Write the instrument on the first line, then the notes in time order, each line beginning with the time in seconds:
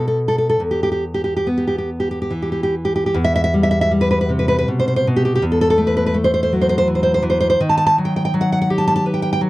nylon-string guitar
Already playing: B2
0.08 A4
0.28 A4
0.38 A4
0.49 A4
0.60 E2
0.71 G4
0.83 G4
0.92 G4
1.14 G4
1.24 G4
1.36 G4
1.47 B3
1.58 G4
1.67 G4
1.78 G4
2.00 G4
2.11 G4
2.22 G4
2.30 E3
2.42 G4
2.52 G4
2.63 G4
2.85 G4
2.96 G4
3.06 G4
3.14 E2
3.24 E5
3.36 E5
3.44 E5
3.54 G3
3.63 E5
3.71 E5
3.81 E5
3.91 G3
4.01 B4
4.11 B4
4.21 B4
4.29 C3
4.39 B4
4.48 B4
4.59 B4
4.68 B2
4.79 C5
4.88 C5
4.96 C5
5.07 B2
5.16 G4
5.25 G4
5.35 G4
5.42 E2
5.52 A4
5.61 A4
5.70 A4
5.78 A3
5.87 B4
5.97 B4
6.06 B4
6.14 A3
6.24 C5
6.34 C5
6.43 C5
6.53 F#3
6.61 C5
6.69 C5
6.78 C5
6.88 E3
6.95 C5
7.03 C5
7.14 C5
7.22 E3
7.30 C5
7.40 C5
7.50 C5
7.60 D#3
7.69 A5
7.77 A5
7.86 A5
7.98 F#3
8.05 G5
8.16 G5
8.25 G5
8.34 F#3
8.41 F#5
8.52 F#5
8.62 F#5
8.70 G4
8.78 A5
8.87 A5
8.96 A5
9.06 B4
9.14 G5
9.22 G5
9.33 G5
9.41 F#3